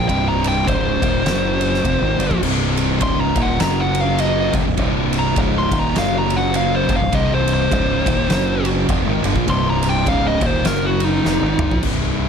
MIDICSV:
0, 0, Header, 1, 5, 480
1, 0, Start_track
1, 0, Tempo, 587659
1, 74, Time_signature, 4, 2, 24, 8
1, 10038, End_track
2, 0, Start_track
2, 0, Title_t, "Lead electric guitar"
2, 0, Program_c, 0, 29
2, 71, Note_on_c, 0, 79, 94
2, 228, Note_off_c, 0, 79, 0
2, 234, Note_on_c, 0, 82, 91
2, 389, Note_off_c, 0, 82, 0
2, 395, Note_on_c, 0, 79, 94
2, 548, Note_on_c, 0, 72, 99
2, 549, Note_off_c, 0, 79, 0
2, 1956, Note_off_c, 0, 72, 0
2, 2469, Note_on_c, 0, 84, 110
2, 2618, Note_off_c, 0, 84, 0
2, 2621, Note_on_c, 0, 82, 89
2, 2780, Note_off_c, 0, 82, 0
2, 2792, Note_on_c, 0, 78, 81
2, 2943, Note_on_c, 0, 82, 102
2, 2946, Note_off_c, 0, 78, 0
2, 3101, Note_off_c, 0, 82, 0
2, 3111, Note_on_c, 0, 78, 98
2, 3273, Note_off_c, 0, 78, 0
2, 3273, Note_on_c, 0, 77, 92
2, 3431, Note_off_c, 0, 77, 0
2, 3431, Note_on_c, 0, 75, 97
2, 3705, Note_off_c, 0, 75, 0
2, 4240, Note_on_c, 0, 82, 111
2, 4389, Note_off_c, 0, 82, 0
2, 4560, Note_on_c, 0, 84, 99
2, 4731, Note_off_c, 0, 84, 0
2, 4731, Note_on_c, 0, 82, 102
2, 4874, Note_off_c, 0, 82, 0
2, 4887, Note_on_c, 0, 77, 95
2, 5032, Note_off_c, 0, 77, 0
2, 5049, Note_on_c, 0, 82, 101
2, 5193, Note_off_c, 0, 82, 0
2, 5198, Note_on_c, 0, 78, 102
2, 5348, Note_off_c, 0, 78, 0
2, 5360, Note_on_c, 0, 77, 87
2, 5508, Note_off_c, 0, 77, 0
2, 5519, Note_on_c, 0, 72, 81
2, 5668, Note_off_c, 0, 72, 0
2, 5684, Note_on_c, 0, 77, 89
2, 5831, Note_off_c, 0, 77, 0
2, 5839, Note_on_c, 0, 75, 94
2, 5988, Note_off_c, 0, 75, 0
2, 6001, Note_on_c, 0, 72, 95
2, 6149, Note_off_c, 0, 72, 0
2, 6158, Note_on_c, 0, 72, 107
2, 7083, Note_off_c, 0, 72, 0
2, 7758, Note_on_c, 0, 84, 93
2, 7908, Note_off_c, 0, 84, 0
2, 7924, Note_on_c, 0, 82, 84
2, 8071, Note_off_c, 0, 82, 0
2, 8077, Note_on_c, 0, 79, 103
2, 8239, Note_off_c, 0, 79, 0
2, 8239, Note_on_c, 0, 77, 93
2, 8388, Note_off_c, 0, 77, 0
2, 8390, Note_on_c, 0, 75, 96
2, 8545, Note_off_c, 0, 75, 0
2, 8545, Note_on_c, 0, 72, 101
2, 8710, Note_off_c, 0, 72, 0
2, 8710, Note_on_c, 0, 70, 97
2, 8865, Note_off_c, 0, 70, 0
2, 8870, Note_on_c, 0, 66, 95
2, 9021, Note_off_c, 0, 66, 0
2, 9021, Note_on_c, 0, 63, 101
2, 9647, Note_off_c, 0, 63, 0
2, 10038, End_track
3, 0, Start_track
3, 0, Title_t, "Distorted electric guitar"
3, 0, Program_c, 1, 30
3, 71, Note_on_c, 1, 36, 93
3, 73, Note_on_c, 1, 43, 93
3, 81, Note_on_c, 1, 48, 96
3, 545, Note_off_c, 1, 36, 0
3, 547, Note_off_c, 1, 43, 0
3, 549, Note_on_c, 1, 37, 88
3, 551, Note_off_c, 1, 48, 0
3, 553, Note_on_c, 1, 44, 78
3, 555, Note_on_c, 1, 49, 90
3, 823, Note_off_c, 1, 37, 0
3, 826, Note_on_c, 1, 39, 88
3, 829, Note_off_c, 1, 44, 0
3, 830, Note_off_c, 1, 49, 0
3, 832, Note_on_c, 1, 46, 89
3, 834, Note_on_c, 1, 51, 100
3, 1015, Note_off_c, 1, 39, 0
3, 1018, Note_on_c, 1, 42, 94
3, 1020, Note_off_c, 1, 46, 0
3, 1023, Note_off_c, 1, 51, 0
3, 1023, Note_on_c, 1, 49, 101
3, 1026, Note_on_c, 1, 54, 92
3, 1498, Note_off_c, 1, 42, 0
3, 1501, Note_off_c, 1, 49, 0
3, 1502, Note_on_c, 1, 41, 99
3, 1503, Note_off_c, 1, 54, 0
3, 1505, Note_on_c, 1, 48, 104
3, 1640, Note_off_c, 1, 41, 0
3, 1642, Note_off_c, 1, 48, 0
3, 1644, Note_on_c, 1, 44, 87
3, 1648, Note_on_c, 1, 51, 88
3, 1779, Note_off_c, 1, 44, 0
3, 1782, Note_on_c, 1, 43, 87
3, 1784, Note_off_c, 1, 51, 0
3, 1787, Note_on_c, 1, 50, 94
3, 1872, Note_off_c, 1, 43, 0
3, 1876, Note_on_c, 1, 46, 99
3, 1881, Note_off_c, 1, 50, 0
3, 1884, Note_on_c, 1, 53, 99
3, 1967, Note_off_c, 1, 46, 0
3, 1970, Note_on_c, 1, 36, 96
3, 1973, Note_off_c, 1, 53, 0
3, 1976, Note_on_c, 1, 43, 103
3, 1977, Note_on_c, 1, 48, 97
3, 2446, Note_off_c, 1, 36, 0
3, 2449, Note_on_c, 1, 37, 88
3, 2453, Note_off_c, 1, 43, 0
3, 2456, Note_off_c, 1, 48, 0
3, 2457, Note_on_c, 1, 44, 90
3, 2459, Note_on_c, 1, 49, 96
3, 2733, Note_off_c, 1, 37, 0
3, 2736, Note_on_c, 1, 39, 101
3, 2738, Note_off_c, 1, 44, 0
3, 2740, Note_off_c, 1, 49, 0
3, 2741, Note_on_c, 1, 46, 100
3, 2745, Note_on_c, 1, 51, 98
3, 2930, Note_off_c, 1, 39, 0
3, 2932, Note_off_c, 1, 46, 0
3, 2934, Note_on_c, 1, 42, 90
3, 2935, Note_on_c, 1, 49, 92
3, 2939, Note_off_c, 1, 51, 0
3, 2944, Note_on_c, 1, 54, 103
3, 3696, Note_off_c, 1, 42, 0
3, 3697, Note_off_c, 1, 49, 0
3, 3699, Note_on_c, 1, 41, 93
3, 3702, Note_off_c, 1, 54, 0
3, 3705, Note_on_c, 1, 48, 104
3, 3798, Note_off_c, 1, 41, 0
3, 3801, Note_off_c, 1, 48, 0
3, 3802, Note_on_c, 1, 36, 70
3, 3806, Note_on_c, 1, 43, 83
3, 3881, Note_off_c, 1, 36, 0
3, 3887, Note_off_c, 1, 43, 0
3, 3891, Note_on_c, 1, 36, 100
3, 3897, Note_on_c, 1, 43, 90
3, 3900, Note_on_c, 1, 48, 106
3, 4373, Note_off_c, 1, 36, 0
3, 4376, Note_off_c, 1, 43, 0
3, 4377, Note_off_c, 1, 48, 0
3, 4378, Note_on_c, 1, 37, 89
3, 4383, Note_on_c, 1, 44, 94
3, 4388, Note_on_c, 1, 49, 100
3, 4658, Note_off_c, 1, 37, 0
3, 4661, Note_off_c, 1, 44, 0
3, 4663, Note_off_c, 1, 49, 0
3, 4664, Note_on_c, 1, 39, 94
3, 4667, Note_on_c, 1, 46, 95
3, 4670, Note_on_c, 1, 51, 100
3, 4856, Note_off_c, 1, 39, 0
3, 4859, Note_off_c, 1, 46, 0
3, 4859, Note_on_c, 1, 42, 100
3, 4860, Note_off_c, 1, 51, 0
3, 4863, Note_on_c, 1, 49, 107
3, 4868, Note_on_c, 1, 54, 103
3, 5618, Note_off_c, 1, 42, 0
3, 5620, Note_off_c, 1, 49, 0
3, 5623, Note_off_c, 1, 54, 0
3, 5628, Note_on_c, 1, 41, 98
3, 5631, Note_on_c, 1, 48, 93
3, 5717, Note_off_c, 1, 41, 0
3, 5720, Note_on_c, 1, 36, 75
3, 5723, Note_off_c, 1, 48, 0
3, 5726, Note_on_c, 1, 43, 77
3, 5806, Note_off_c, 1, 36, 0
3, 5814, Note_off_c, 1, 43, 0
3, 5816, Note_on_c, 1, 36, 90
3, 5824, Note_on_c, 1, 43, 89
3, 5827, Note_on_c, 1, 48, 106
3, 6290, Note_off_c, 1, 36, 0
3, 6293, Note_off_c, 1, 43, 0
3, 6293, Note_on_c, 1, 37, 85
3, 6296, Note_on_c, 1, 44, 97
3, 6297, Note_off_c, 1, 48, 0
3, 6300, Note_on_c, 1, 49, 102
3, 6575, Note_off_c, 1, 37, 0
3, 6577, Note_off_c, 1, 44, 0
3, 6579, Note_off_c, 1, 49, 0
3, 6582, Note_on_c, 1, 39, 89
3, 6586, Note_on_c, 1, 46, 104
3, 6590, Note_on_c, 1, 51, 111
3, 6773, Note_off_c, 1, 39, 0
3, 6776, Note_off_c, 1, 46, 0
3, 6777, Note_on_c, 1, 42, 87
3, 6779, Note_off_c, 1, 51, 0
3, 6779, Note_on_c, 1, 49, 113
3, 6783, Note_on_c, 1, 54, 104
3, 7249, Note_off_c, 1, 42, 0
3, 7253, Note_on_c, 1, 41, 106
3, 7256, Note_off_c, 1, 49, 0
3, 7258, Note_off_c, 1, 54, 0
3, 7259, Note_on_c, 1, 48, 99
3, 7390, Note_off_c, 1, 41, 0
3, 7393, Note_off_c, 1, 48, 0
3, 7393, Note_on_c, 1, 44, 84
3, 7397, Note_on_c, 1, 51, 89
3, 7532, Note_off_c, 1, 44, 0
3, 7535, Note_on_c, 1, 43, 97
3, 7536, Note_off_c, 1, 51, 0
3, 7539, Note_on_c, 1, 50, 91
3, 7630, Note_off_c, 1, 43, 0
3, 7634, Note_on_c, 1, 46, 102
3, 7637, Note_off_c, 1, 50, 0
3, 7640, Note_on_c, 1, 53, 106
3, 7733, Note_off_c, 1, 46, 0
3, 7736, Note_off_c, 1, 53, 0
3, 7736, Note_on_c, 1, 36, 86
3, 7740, Note_on_c, 1, 43, 96
3, 7748, Note_on_c, 1, 48, 108
3, 8216, Note_off_c, 1, 36, 0
3, 8218, Note_off_c, 1, 43, 0
3, 8220, Note_on_c, 1, 37, 95
3, 8222, Note_off_c, 1, 48, 0
3, 8224, Note_on_c, 1, 44, 86
3, 8228, Note_on_c, 1, 49, 107
3, 8497, Note_off_c, 1, 37, 0
3, 8500, Note_on_c, 1, 39, 92
3, 8502, Note_off_c, 1, 44, 0
3, 8504, Note_off_c, 1, 49, 0
3, 8508, Note_on_c, 1, 46, 103
3, 8511, Note_on_c, 1, 51, 100
3, 8696, Note_off_c, 1, 39, 0
3, 8700, Note_off_c, 1, 46, 0
3, 8702, Note_off_c, 1, 51, 0
3, 8706, Note_on_c, 1, 42, 88
3, 8712, Note_on_c, 1, 49, 98
3, 8714, Note_on_c, 1, 54, 105
3, 9182, Note_off_c, 1, 42, 0
3, 9185, Note_off_c, 1, 49, 0
3, 9186, Note_off_c, 1, 54, 0
3, 9188, Note_on_c, 1, 41, 103
3, 9194, Note_on_c, 1, 48, 118
3, 9320, Note_off_c, 1, 41, 0
3, 9322, Note_off_c, 1, 48, 0
3, 9323, Note_on_c, 1, 44, 85
3, 9326, Note_on_c, 1, 51, 105
3, 9462, Note_off_c, 1, 44, 0
3, 9463, Note_off_c, 1, 51, 0
3, 9465, Note_on_c, 1, 43, 93
3, 9469, Note_on_c, 1, 50, 101
3, 9562, Note_off_c, 1, 43, 0
3, 9564, Note_off_c, 1, 50, 0
3, 9567, Note_on_c, 1, 46, 99
3, 9574, Note_on_c, 1, 53, 126
3, 9653, Note_off_c, 1, 46, 0
3, 9657, Note_on_c, 1, 36, 82
3, 9660, Note_off_c, 1, 53, 0
3, 9663, Note_on_c, 1, 43, 101
3, 9667, Note_on_c, 1, 48, 93
3, 10034, Note_off_c, 1, 36, 0
3, 10038, Note_off_c, 1, 43, 0
3, 10038, Note_off_c, 1, 48, 0
3, 10038, End_track
4, 0, Start_track
4, 0, Title_t, "Fingered electric bass"
4, 0, Program_c, 2, 33
4, 77, Note_on_c, 2, 24, 94
4, 522, Note_off_c, 2, 24, 0
4, 555, Note_on_c, 2, 25, 92
4, 819, Note_off_c, 2, 25, 0
4, 836, Note_on_c, 2, 27, 94
4, 1018, Note_off_c, 2, 27, 0
4, 1025, Note_on_c, 2, 30, 92
4, 1475, Note_off_c, 2, 30, 0
4, 1509, Note_on_c, 2, 29, 90
4, 1642, Note_off_c, 2, 29, 0
4, 1650, Note_on_c, 2, 32, 88
4, 1784, Note_off_c, 2, 32, 0
4, 1789, Note_on_c, 2, 31, 93
4, 1883, Note_off_c, 2, 31, 0
4, 1891, Note_on_c, 2, 34, 88
4, 1983, Note_off_c, 2, 34, 0
4, 1987, Note_on_c, 2, 24, 88
4, 2435, Note_off_c, 2, 24, 0
4, 2464, Note_on_c, 2, 25, 100
4, 2731, Note_off_c, 2, 25, 0
4, 2748, Note_on_c, 2, 27, 94
4, 2932, Note_off_c, 2, 27, 0
4, 2952, Note_on_c, 2, 30, 105
4, 3681, Note_off_c, 2, 30, 0
4, 3708, Note_on_c, 2, 29, 92
4, 3801, Note_off_c, 2, 29, 0
4, 3815, Note_on_c, 2, 24, 86
4, 3900, Note_off_c, 2, 24, 0
4, 3905, Note_on_c, 2, 24, 93
4, 4353, Note_off_c, 2, 24, 0
4, 4384, Note_on_c, 2, 25, 95
4, 4650, Note_off_c, 2, 25, 0
4, 4672, Note_on_c, 2, 27, 92
4, 4853, Note_off_c, 2, 27, 0
4, 4877, Note_on_c, 2, 30, 102
4, 5603, Note_off_c, 2, 30, 0
4, 5630, Note_on_c, 2, 29, 97
4, 5721, Note_off_c, 2, 29, 0
4, 5733, Note_on_c, 2, 24, 82
4, 5818, Note_off_c, 2, 24, 0
4, 5823, Note_on_c, 2, 24, 93
4, 6271, Note_off_c, 2, 24, 0
4, 6304, Note_on_c, 2, 25, 100
4, 6570, Note_off_c, 2, 25, 0
4, 6590, Note_on_c, 2, 27, 97
4, 6772, Note_off_c, 2, 27, 0
4, 6788, Note_on_c, 2, 30, 105
4, 7234, Note_off_c, 2, 30, 0
4, 7264, Note_on_c, 2, 29, 103
4, 7397, Note_off_c, 2, 29, 0
4, 7408, Note_on_c, 2, 32, 94
4, 7541, Note_off_c, 2, 32, 0
4, 7554, Note_on_c, 2, 31, 96
4, 7639, Note_off_c, 2, 31, 0
4, 7644, Note_on_c, 2, 34, 92
4, 7737, Note_off_c, 2, 34, 0
4, 7743, Note_on_c, 2, 24, 91
4, 8193, Note_off_c, 2, 24, 0
4, 8222, Note_on_c, 2, 25, 103
4, 8489, Note_off_c, 2, 25, 0
4, 8507, Note_on_c, 2, 27, 102
4, 8692, Note_off_c, 2, 27, 0
4, 8710, Note_on_c, 2, 30, 106
4, 9157, Note_off_c, 2, 30, 0
4, 9189, Note_on_c, 2, 29, 91
4, 9322, Note_off_c, 2, 29, 0
4, 9331, Note_on_c, 2, 32, 94
4, 9464, Note_off_c, 2, 32, 0
4, 9470, Note_on_c, 2, 31, 103
4, 9563, Note_off_c, 2, 31, 0
4, 9569, Note_on_c, 2, 34, 96
4, 9662, Note_off_c, 2, 34, 0
4, 9665, Note_on_c, 2, 24, 84
4, 10025, Note_off_c, 2, 24, 0
4, 10038, End_track
5, 0, Start_track
5, 0, Title_t, "Drums"
5, 74, Note_on_c, 9, 36, 91
5, 77, Note_on_c, 9, 51, 94
5, 156, Note_off_c, 9, 36, 0
5, 158, Note_off_c, 9, 51, 0
5, 361, Note_on_c, 9, 51, 76
5, 443, Note_off_c, 9, 51, 0
5, 553, Note_on_c, 9, 36, 102
5, 556, Note_on_c, 9, 51, 100
5, 634, Note_off_c, 9, 36, 0
5, 638, Note_off_c, 9, 51, 0
5, 836, Note_on_c, 9, 36, 110
5, 839, Note_on_c, 9, 51, 78
5, 917, Note_off_c, 9, 36, 0
5, 921, Note_off_c, 9, 51, 0
5, 1028, Note_on_c, 9, 51, 99
5, 1035, Note_on_c, 9, 38, 122
5, 1110, Note_off_c, 9, 51, 0
5, 1116, Note_off_c, 9, 38, 0
5, 1313, Note_on_c, 9, 51, 75
5, 1395, Note_off_c, 9, 51, 0
5, 1423, Note_on_c, 9, 38, 35
5, 1504, Note_off_c, 9, 38, 0
5, 1509, Note_on_c, 9, 36, 101
5, 1510, Note_on_c, 9, 51, 106
5, 1590, Note_off_c, 9, 36, 0
5, 1592, Note_off_c, 9, 51, 0
5, 1795, Note_on_c, 9, 51, 76
5, 1877, Note_off_c, 9, 51, 0
5, 1887, Note_on_c, 9, 36, 113
5, 1969, Note_off_c, 9, 36, 0
5, 1983, Note_on_c, 9, 36, 94
5, 1984, Note_on_c, 9, 49, 102
5, 2065, Note_off_c, 9, 36, 0
5, 2065, Note_off_c, 9, 49, 0
5, 2266, Note_on_c, 9, 51, 84
5, 2348, Note_off_c, 9, 51, 0
5, 2456, Note_on_c, 9, 51, 110
5, 2461, Note_on_c, 9, 36, 113
5, 2537, Note_off_c, 9, 51, 0
5, 2542, Note_off_c, 9, 36, 0
5, 2742, Note_on_c, 9, 51, 86
5, 2745, Note_on_c, 9, 36, 122
5, 2823, Note_off_c, 9, 51, 0
5, 2827, Note_off_c, 9, 36, 0
5, 2939, Note_on_c, 9, 51, 110
5, 2946, Note_on_c, 9, 38, 119
5, 3021, Note_off_c, 9, 51, 0
5, 3028, Note_off_c, 9, 38, 0
5, 3224, Note_on_c, 9, 51, 77
5, 3305, Note_off_c, 9, 51, 0
5, 3418, Note_on_c, 9, 51, 110
5, 3499, Note_off_c, 9, 51, 0
5, 3703, Note_on_c, 9, 51, 74
5, 3706, Note_on_c, 9, 36, 115
5, 3785, Note_off_c, 9, 51, 0
5, 3788, Note_off_c, 9, 36, 0
5, 3900, Note_on_c, 9, 51, 94
5, 3902, Note_on_c, 9, 36, 95
5, 3981, Note_off_c, 9, 51, 0
5, 3984, Note_off_c, 9, 36, 0
5, 4188, Note_on_c, 9, 51, 71
5, 4270, Note_off_c, 9, 51, 0
5, 4379, Note_on_c, 9, 51, 95
5, 4383, Note_on_c, 9, 36, 106
5, 4461, Note_off_c, 9, 51, 0
5, 4465, Note_off_c, 9, 36, 0
5, 4669, Note_on_c, 9, 36, 115
5, 4670, Note_on_c, 9, 51, 84
5, 4750, Note_off_c, 9, 36, 0
5, 4752, Note_off_c, 9, 51, 0
5, 4865, Note_on_c, 9, 51, 98
5, 4872, Note_on_c, 9, 38, 125
5, 4947, Note_off_c, 9, 51, 0
5, 4953, Note_off_c, 9, 38, 0
5, 5148, Note_on_c, 9, 51, 71
5, 5230, Note_off_c, 9, 51, 0
5, 5341, Note_on_c, 9, 51, 112
5, 5423, Note_off_c, 9, 51, 0
5, 5627, Note_on_c, 9, 36, 101
5, 5629, Note_on_c, 9, 51, 72
5, 5709, Note_off_c, 9, 36, 0
5, 5710, Note_off_c, 9, 51, 0
5, 5821, Note_on_c, 9, 36, 97
5, 5821, Note_on_c, 9, 51, 110
5, 5902, Note_off_c, 9, 36, 0
5, 5903, Note_off_c, 9, 51, 0
5, 6107, Note_on_c, 9, 51, 78
5, 6188, Note_off_c, 9, 51, 0
5, 6302, Note_on_c, 9, 36, 120
5, 6306, Note_on_c, 9, 51, 112
5, 6384, Note_off_c, 9, 36, 0
5, 6387, Note_off_c, 9, 51, 0
5, 6586, Note_on_c, 9, 36, 115
5, 6590, Note_on_c, 9, 51, 90
5, 6667, Note_off_c, 9, 36, 0
5, 6671, Note_off_c, 9, 51, 0
5, 6778, Note_on_c, 9, 51, 108
5, 6784, Note_on_c, 9, 38, 117
5, 6859, Note_off_c, 9, 51, 0
5, 6866, Note_off_c, 9, 38, 0
5, 7064, Note_on_c, 9, 51, 77
5, 7145, Note_off_c, 9, 51, 0
5, 7260, Note_on_c, 9, 36, 115
5, 7260, Note_on_c, 9, 51, 105
5, 7341, Note_off_c, 9, 36, 0
5, 7342, Note_off_c, 9, 51, 0
5, 7547, Note_on_c, 9, 51, 74
5, 7629, Note_off_c, 9, 51, 0
5, 7642, Note_on_c, 9, 36, 108
5, 7724, Note_off_c, 9, 36, 0
5, 7740, Note_on_c, 9, 36, 91
5, 7742, Note_on_c, 9, 51, 99
5, 7822, Note_off_c, 9, 36, 0
5, 7823, Note_off_c, 9, 51, 0
5, 8026, Note_on_c, 9, 51, 74
5, 8108, Note_off_c, 9, 51, 0
5, 8220, Note_on_c, 9, 36, 114
5, 8222, Note_on_c, 9, 51, 106
5, 8302, Note_off_c, 9, 36, 0
5, 8304, Note_off_c, 9, 51, 0
5, 8505, Note_on_c, 9, 36, 114
5, 8506, Note_on_c, 9, 51, 83
5, 8587, Note_off_c, 9, 36, 0
5, 8588, Note_off_c, 9, 51, 0
5, 8697, Note_on_c, 9, 51, 102
5, 8704, Note_on_c, 9, 38, 120
5, 8779, Note_off_c, 9, 51, 0
5, 8785, Note_off_c, 9, 38, 0
5, 8986, Note_on_c, 9, 51, 75
5, 9068, Note_off_c, 9, 51, 0
5, 9190, Note_on_c, 9, 38, 70
5, 9272, Note_off_c, 9, 38, 0
5, 9467, Note_on_c, 9, 45, 94
5, 9548, Note_off_c, 9, 45, 0
5, 9568, Note_on_c, 9, 43, 100
5, 9650, Note_off_c, 9, 43, 0
5, 9661, Note_on_c, 9, 49, 104
5, 9663, Note_on_c, 9, 36, 100
5, 9742, Note_off_c, 9, 49, 0
5, 9744, Note_off_c, 9, 36, 0
5, 10038, End_track
0, 0, End_of_file